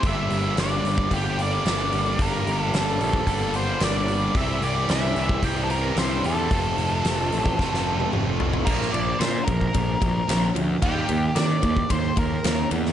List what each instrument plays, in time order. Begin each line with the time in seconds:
0.03 picked electric bass G1, distorted electric guitar G2 D3 G3 A#3 D4 G4, kick, open hi-hat
0.07 lead electric guitar E5
0.30 picked electric bass G1, open hi-hat
0.57 picked electric bass G1, lead electric guitar D5, snare, open hi-hat
0.84 picked electric bass G1, open hi-hat
0.98 kick
1.10 picked electric bass G1, distorted electric guitar G2 D3 G3 A#3 D4 G4, lead electric guitar G4, kick, open hi-hat
1.39 lead electric guitar D5, open hi-hat
1.66 picked electric bass G1, snare, open hi-hat
1.92 picked electric bass G1, open hi-hat
2.18 picked electric bass G1, distorted electric guitar G2 D3 G3 A#3 D4 G4, kick, open hi-hat
2.22 lead electric guitar A#4
2.47 picked electric bass G1, open hi-hat
2.62 lead electric guitar A4
2.74 picked electric bass G1, lead electric guitar A4, snare, open hi-hat
3.00 picked electric bass A#1, lead electric guitar A4, open hi-hat
3.13 kick
3.26 picked electric bass G1, distorted electric guitar G2 D3 G3 A#3 D4 G4, lead electric guitar A4, kick, open hi-hat
3.54 lead electric guitar C5, open hi-hat
3.80 picked electric bass G1, lead electric guitar D5, snare, open hi-hat
4.08 open hi-hat
4.34 picked electric bass C2, distorted electric guitar C3 E3 G3 C4 G4, lead electric guitar E5, kick, open hi-hat
4.62 picked electric bass C2, lead electric guitar D5, open hi-hat
4.88 picked electric bass C2, lead electric guitar E5, snare, open hi-hat
5.15 picked electric bass C2, open hi-hat
5.29 kick
5.42 picked electric bass C2, distorted electric guitar C3 E3 G3 C4 G4, lead electric guitar G5, kick, open hi-hat
5.63 lead electric guitar A4
5.70 lead electric guitar A#4, open hi-hat
5.96 picked electric bass C2, lead electric guitar C5, snare, open hi-hat
6.23 picked electric bass E2, lead electric guitar A4, open hi-hat
6.50 picked electric bass F1, distorted electric guitar F2 C3 F3 A3 C4 F4, kick, open hi-hat
6.77 picked electric bass F1, open hi-hat
7.05 picked electric bass F1, snare, open hi-hat
7.32 picked electric bass A1, open hi-hat
7.46 kick
7.58 picked electric bass F1, distorted electric guitar F2 C3 F3 A3 C4 F4, kick, snare
7.74 snare
8.00 high tom
8.13 picked electric bass F1, mid tom
8.40 floor tom
8.53 floor tom
8.65 picked electric bass A#1, distorted electric guitar A#2 F3 A#3, lead electric guitar A#4, kick, crash
8.82 snare
8.91 picked electric bass A#1, distorted electric guitar A#2 F3, lead electric guitar D5, ride
9.19 picked electric bass A#2, distorted electric guitar A#2 F3, lead electric guitar C5, snare, ride
9.44 picked electric bass A#1, distorted electric guitar A#2 F3, lead electric guitar A#4, kick, ride
9.61 kick
9.74 picked electric bass A#1, distorted electric guitar A#2 F3, kick, ride
10.01 picked electric bass A#1, distorted electric guitar A#2 F3, kick, ride
10.28 picked electric bass A#1, distorted electric guitar A#2 F3, snare, ride
10.55 picked electric bass D2, distorted electric guitar A#2 F3, ride
10.82 picked electric bass D#2, distorted electric guitar D#3 G3 A#3, lead electric guitar G4, kick, ride
11.09 picked electric bass D#2, distorted electric guitar D#3 A#3, ride
11.35 picked electric bass D#3, distorted electric guitar D#3 A#3, lead electric guitar D5, snare, ride
11.62 picked electric bass D#2, distorted electric guitar D#3 A#3, kick, ride
11.77 kick
11.90 picked electric bass D#2, distorted electric guitar D#3 A#3, lead electric guitar C5, kick, ride
12.16 picked electric bass D#2, distorted electric guitar D#3 A#3, lead electric guitar A#4, kick, ride
12.44 picked electric bass D#2, distorted electric guitar D#3 A#3, snare, ride
12.71 picked electric bass E2, distorted electric guitar D#3 A#3, ride
12.86 snare